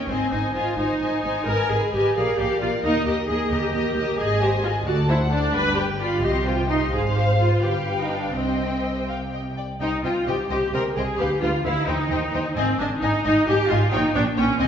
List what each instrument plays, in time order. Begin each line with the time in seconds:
0.08 double bass section G#1, cello section G#2, viola section C4, violin section C5 D#5 G#5
0.31 double bass section G#1, cello section G#2, viola section D#4, violin section C5 D#5 G#5
0.54 double bass section G#1, cello section G#2, viola section F4, violin section C5 D#5 G#5
0.76 double bass section G#1, cello section G#2, viola section D#4, violin section C5 D#5 G#5
1.00 double bass section G#1, cello section G#2, violin section C5 D#5 G#5
1.23 double bass section G#1, cello section G#2, violin section C5 D#5 G#5
1.46 double bass section G#1, cello section G#2, viola section A#4, violin section B4 D#5 G#5
1.69 double bass section G#1, cello section G#2, viola section G#4, violin section B4 D#5 G#5
1.92 double bass section G#1, cello section G#2, viola section G4, violin section B4 D#5 G#5
2.16 double bass section A#1, cello section A#2, viola section G#4, violin section A#4 D5 F5
2.38 double bass section A#1, cello section A#2, viola section G4, violin section A#4 D5 F5
2.60 double bass section A#1, cello section A#2, viola section F4, violin section A#4 D5 F5
2.83 double bass section D#2, cello section D#2, viola section D#4, violin section A#4 D#5
3.06 double bass section D#2, cello section D#2, viola section G4, violin section A#4 D#5
3.27 double bass section D#2, cello section D#2, viola section G#4, violin section A#4 D#5
3.50 double bass section D#2, cello section D#2, viola section G4, violin section A#4 D#5
3.73 double bass section D#2, cello section D#2, violin section A#4 D#5
3.95 cello section D#2, double bass section D#2, violin section A#4 D#5
4.18 double bass section G#1, cello section G#2, viola section G#4, violin section G#4 D#5 G#5
4.41 viola section G4, violin section C5 D#5 G#5
4.64 viola section F4, violin section G#4 D#5 G#5
4.86 cello section D2, double bass section D2, viola section F#4, violin section A4 D5 A5
5.09 viola section E4, violin section C5 F#5
5.31 viola section D4, violin section A4 D5 A5
5.53 double bass section G1, cello section G2, violin section G4 D5 B5, viola section B4
5.76 viola section G4, violin section B4 G5
6.00 viola section F4, violin section G4 D5 B5
6.22 double bass section C2, cello section C3, violin section G4 D#5 C6, viola section G4
6.45 viola section F4, violin section C5 G5
6.69 viola section D#4, violin section G4 D#5 C6
6.92 double bass section G#1, cello section G#2, viola section G#4, violin section C5 F5
7.16 viola section G4
7.39 viola section F4
7.63 double bass section G1, cello section G2, viola section G4, violin section B4 F5 G5
8.00 viola section D#4
8.11 viola section D4
8.35 double bass section C2, cello section C3, viola section C4, violin section C5 D#5 G5
9.09 violin section F5
9.33 violin section D#5
9.57 violin section D5
9.80 double bass section C2, cello section C3, viola section D#4, violin section C5 D#5 G5
10.03 double bass section C2, cello section C3, viola section F4, violin section C5 D#5 G5
10.27 double bass section C2, cello section C3, viola section G4, violin section C5 D#5 G5
10.50 double bass section C2, cello section C3, viola section G4, violin section C5 D#5 G5
10.73 double bass section C2, cello section C3, viola section A#4, violin section C5 D#5 G5
10.95 double bass section C2, cello section C3, viola section G#4, violin section C5 D#5 G5
11.18 double bass section D2, cello section D3, viola section G4, violin section B4 F5
11.41 double bass section D2, cello section D3, viola section F4, violin section B4 F5
11.64 double bass section D2, cello section D3, viola section E4, violin section B4 F5
11.87 double bass section D#2, cello section D#3, viola section D#4, violin section C5 D#5 G5
12.10 double bass section D#2, cello section D#3, violin section C5 D#5 G5
12.33 double bass section D#2, cello section D#3, violin section C5 D#5 G5
12.56 double bass section G#1, cello section G#2, viola section C4, violin section D#5 G#5
12.79 double bass section G#1, cello section G#2, viola section D4, violin section D#5 G#5
13.02 double bass section G#1, cello section G#2, viola section D#4, violin section D#5 G#5
13.25 double bass section G#1, cello section G#2, viola section D#4, violin section D#5 G#5
13.47 double bass section G#1, cello section G#2, viola section G4, violin section D#5 G#5
13.70 double bass section G#1, cello section G#2, viola section F4, violin section D#5 G#5
13.92 double bass section A#1, cello section A#2, viola section D#4, violin section C#5 G5
14.15 double bass section A#1, cello section A#2, viola section D4, violin section C#5 G5
14.37 double bass section A#1, cello section A#2, viola section C#4, violin section C#5 G5
14.59 double bass section C2, cello section C3, viola section C4, violin section D#5 G#5